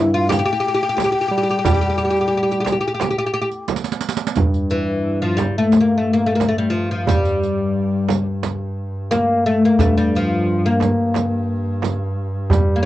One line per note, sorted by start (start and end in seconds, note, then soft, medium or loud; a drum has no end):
0.00 0.40 G2 medium
0.00 0.14 E4 medium
0.00 0.13 E5 medium
0.14 0.29 F4 medium
0.14 0.34 F5 medium
0.29 0.37 G4 loud
0.29 3.70 G5 loud
0.29 riq medium
0.29 darbuka tek medium
0.29 frame drum medium
0.39 0.44 G4 medium
0.46 0.51 G4 medium
0.53 0.59 G4 medium
0.60 0.67 G4 medium
0.68 0.73 G4 medium
0.74 0.82 G4 medium
0.81 0.88 G4 medium
0.81 darbuka ka soft
0.89 0.95 G4 medium
0.97 1.03 G4 medium
0.97 riq medium
0.97 darbuka tek medium
0.97 frame drum medium
1.04 1.11 G4 medium
1.12 1.20 G4 medium
1.21 1.27 G4 medium
1.28 1.59 G3 medium
1.28 1.36 G4 medium
1.38 1.42 G4 medium
1.43 1.49 G4 medium
1.49 1.58 G4 medium
1.49 riq soft
1.59 1.64 G4 medium
1.64 2.75 G3 loud
1.64 1.73 G4 medium
1.64 riq medium
1.64 darbuka dum medium
1.64 frame drum loud
1.74 1.80 G4 medium
1.81 1.88 G4 medium
1.81 riq soft
1.81 darbuka ka soft
1.90 1.96 G4 medium
1.98 2.04 G4 medium
1.98 riq soft
1.98 darbuka ka soft
2.05 2.09 G4 medium
2.10 2.18 G4 medium
2.17 riq soft
2.21 2.27 G4 medium
2.28 2.34 G4 medium
2.37 2.42 G4 medium
2.43 2.49 G4 medium
2.49 2.58 G4 medium
2.49 riq soft
2.49 darbuka ka soft
2.60 2.63 G4 medium
2.65 2.71 G4 medium
2.65 riq medium
2.65 darbuka tek medium
2.65 frame drum medium
2.72 2.79 G4 medium
2.81 2.86 G4 medium
2.88 2.93 G4 medium
2.94 3.01 G4 medium
3.00 3.09 G4 medium
3.00 riq medium
3.00 darbuka tek medium
3.00 frame drum medium
3.11 3.17 G4 medium
3.18 3.25 G4 medium
3.26 3.33 G4 medium
3.34 3.40 G4 medium
3.42 3.48 G4 medium
3.51 riq soft
3.51 darbuka ka soft
3.68 riq medium
3.68 darbuka tek medium
3.68 frame drum medium
3.76 riq medium
3.84 riq medium
3.84 darbuka ka soft
3.92 riq medium
4.01 riq medium
4.09 riq medium
4.17 riq medium
4.17 darbuka ka soft
4.27 riq loud
4.36 9.78 G2 medium
4.36 5.47 G2 medium
4.36 riq medium
4.36 frame drum medium
4.36 darbuka dum medium
4.54 riq soft
4.54 darbuka ka soft
4.70 5.21 E3 medium
4.70 riq soft
4.70 darbuka ka soft
4.88 darbuka ka soft
5.21 5.36 F3 medium
5.21 darbuka ka soft
5.37 5.57 G3 medium
5.37 riq medium
5.37 darbuka tek medium
5.37 frame drum medium
5.58 5.80 A3 medium
5.72 riq soft
5.72 darbuka tek medium
5.72 frame drum medium
5.81 5.96 A#3 medium
5.98 6.11 A3 medium
6.13 6.24 A#3 medium
6.26 6.35 A3 medium
6.35 6.46 A#3 medium
6.40 riq medium
6.40 darbuka tek medium
6.40 frame drum medium
6.49 6.57 A3 medium
6.58 6.70 G3 medium
6.70 6.90 F3 medium
6.91 7.08 F3 medium
7.07 8.18 G3 medium
7.07 8.25 G3 medium
7.07 riq medium
7.07 frame drum medium
7.07 darbuka dum medium
7.25 riq soft
7.25 darbuka ka soft
7.43 riq soft
7.58 darbuka ka soft
7.93 darbuka ka soft
8.09 riq medium
8.09 darbuka tek medium
8.09 frame drum medium
8.43 riq medium
8.43 darbuka tek medium
8.43 frame drum medium
9.11 9.46 A#3 medium
9.11 riq medium
9.11 darbuka tek medium
9.11 frame drum medium
9.46 9.65 A3 medium
9.65 9.79 A#3 medium
9.79 12.86 G2 medium
9.79 10.90 G2 medium
9.79 9.97 A3 medium
9.79 riq medium
9.79 darbuka dum medium
9.79 frame drum medium
9.96 10.14 G3 medium
9.96 riq soft
9.96 darbuka ka soft
10.15 10.67 F3 medium
10.15 riq soft
10.30 darbuka ka soft
10.66 11.95 A#3 medium
10.80 riq soft
10.80 darbuka tek medium
10.80 frame drum medium
11.14 riq medium
11.14 darbuka tek medium
11.14 frame drum medium
11.82 riq soft
11.82 darbuka tek medium
11.82 frame drum medium
12.50 12.86 G3 medium
12.50 riq medium
12.50 darbuka dum loud
12.50 frame drum medium
12.68 darbuka ka soft
12.76 12.82 A#3 medium